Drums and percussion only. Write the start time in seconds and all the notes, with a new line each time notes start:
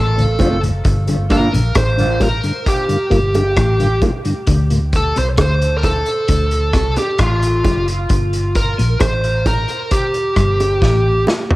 0.18 closed hi-hat
0.39 kick, closed hi-hat, high bongo, low bongo
0.63 closed hi-hat
0.85 kick, closed hi-hat
1.07 closed hi-hat
1.30 kick, closed hi-hat
1.54 closed hi-hat
1.75 kick, cross-stick, closed hi-hat, high bongo
1.98 closed hi-hat
2.20 kick, closed hi-hat, high bongo, low bongo
2.43 closed hi-hat
2.66 kick, closed hi-hat
2.89 closed hi-hat
3.11 kick, closed hi-hat
3.34 closed hi-hat, high bongo
3.56 kick, cross-stick, closed hi-hat
3.80 closed hi-hat
4.02 kick, closed hi-hat, high bongo, low bongo
4.25 closed hi-hat
4.47 kick, closed hi-hat
4.70 closed hi-hat
4.93 kick, closed hi-hat
5.16 closed hi-hat
5.37 kick, cross-stick, closed hi-hat, high bongo
5.62 closed hi-hat
5.83 kick, closed hi-hat, high bongo, low bongo
6.06 closed hi-hat
6.28 kick, closed hi-hat
6.51 closed hi-hat
6.73 kick, cross-stick, closed hi-hat
6.96 closed hi-hat, high bongo
7.18 kick, cross-stick, closed hi-hat
7.42 closed hi-hat
7.64 kick, closed hi-hat, high bongo, low bongo
7.88 closed hi-hat
8.09 kick, closed hi-hat
8.33 closed hi-hat
8.55 kick, closed hi-hat
8.79 closed hi-hat
9.00 kick, cross-stick, closed hi-hat, high bongo
9.24 closed hi-hat
9.46 kick, closed hi-hat, high bongo, low bongo
9.68 closed hi-hat
9.91 kick, closed hi-hat
10.14 closed hi-hat
10.36 kick, cross-stick, closed hi-hat
10.60 closed hi-hat, high bongo
10.82 kick, snare
11.27 snare, high bongo, low bongo
11.51 floor tom